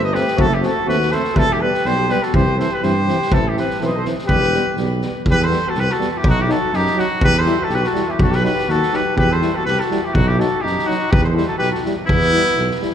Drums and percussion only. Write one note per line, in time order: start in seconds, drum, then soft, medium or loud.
0.15 snare soft
0.27 snare soft
0.38 kick medium
0.63 snare soft
0.89 snare soft
1.02 snare soft
1.11 snare soft
1.24 snare soft
1.36 kick medium
1.74 snare soft
1.85 snare soft
2.09 snare soft
2.22 snare soft
2.34 kick medium
2.60 snare soft
2.83 snare soft
3.08 snare soft
3.22 snare soft
3.32 kick medium
3.57 snare soft
3.70 snare soft
3.81 snare soft
4.05 snare soft
4.18 snare soft
4.29 kick medium
4.43 snare soft
4.53 snare soft
4.77 snare soft
5.01 snare soft
5.26 kick medium
5.51 snare soft
5.75 snare soft
5.89 snare soft
6.01 snare soft
6.24 kick medium
6.49 snare soft
6.73 snare soft
6.86 snare soft
6.99 snare soft
7.21 kick loud
7.45 snare soft
7.69 snare soft
7.84 snare soft
7.95 snare soft
8.19 kick medium
8.32 snare soft
8.45 snare soft
8.58 snare soft
8.69 snare soft
8.83 snare soft
8.93 snare soft
9.18 kick medium
9.42 snare soft
9.67 snare soft
9.80 snare soft
9.91 snare soft
10.15 kick medium
10.40 snare soft
10.66 snare soft
10.79 snare soft
10.90 snare soft
11.13 kick loud
11.38 snare soft
11.62 snare soft
11.74 snare soft
11.85 snare soft
12.09 kick medium
12.21 snare soft
12.33 snare soft
12.46 snare soft
12.59 snare soft
12.71 snare soft
12.82 snare soft